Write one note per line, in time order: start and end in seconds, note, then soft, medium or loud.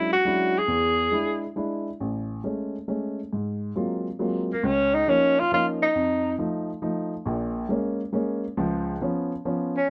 0.00 0.11 F#3 soft
0.00 0.11 G#3 soft
0.00 0.11 C#4 soft
0.00 0.11 D4 soft
0.00 0.11 E4 medium
0.00 0.11 E4 soft
0.13 0.60 F#4 medium
0.25 0.56 F#3 soft
0.25 0.56 G#3 soft
0.25 0.56 C#4 soft
0.25 0.56 D4 soft
0.25 0.56 E4 medium
0.58 1.44 G#4 medium
0.68 1.06 E2 medium
1.12 1.43 G#3 soft
1.12 1.43 D4 soft
1.12 1.43 E4 medium
1.56 1.87 G#3 soft
1.56 1.87 D4 soft
1.56 1.87 E4 medium
2.00 2.39 A1 medium
2.44 2.75 G#3 soft
2.44 2.75 A3 soft
2.44 2.75 C#4 medium
2.88 3.19 G#3 soft
2.88 3.19 A3 soft
2.88 3.19 C#4 medium
3.33 3.71 G#2 medium
3.76 4.06 F#3 soft
3.76 4.07 G#3 soft
3.76 4.06 A#3 soft
3.76 4.07 C4 soft
3.76 4.07 F4 soft
4.19 4.50 F#3 soft
4.19 4.50 G#3 soft
4.19 4.50 A#3 soft
4.19 4.50 C4 soft
4.19 4.51 F4 soft
4.53 4.68 A#3 medium
4.63 5.02 C#2 medium
4.63 4.96 C#4 medium
4.95 5.11 D#4 medium
5.07 5.38 F3 medium
5.07 5.38 A#3 soft
5.07 5.38 C#4 medium
5.07 5.41 C#4 medium
5.07 5.38 D#4 medium
5.40 5.53 F4 loud
5.52 5.82 F3 medium
5.52 5.82 A#3 soft
5.52 5.82 C#4 medium
5.52 5.82 D#4 medium
5.52 5.66 F4 medium
5.82 6.36 D#4 medium
5.95 6.33 F2 medium
6.39 6.69 F3 medium
6.39 6.69 A3 soft
6.39 6.69 D#4 medium
6.82 7.13 F3 medium
6.82 7.13 A3 soft
6.82 7.13 D#4 medium
7.26 7.64 A#1 medium
7.26 7.64 A#2 medium
7.69 8.00 G#3 medium
7.69 8.00 A#3 medium
7.69 8.00 C#4 medium
8.13 8.43 G#3 medium
8.13 8.44 A#3 soft
8.13 8.44 C#4 medium
8.57 8.95 C#2 medium
8.57 8.95 F3 medium
9.01 9.31 F3 medium
9.01 9.31 B3 soft
9.01 9.32 C#4 medium
9.45 9.75 F3 medium
9.45 9.75 B3 soft
9.45 9.75 C#4 medium
9.77 9.89 C#4 medium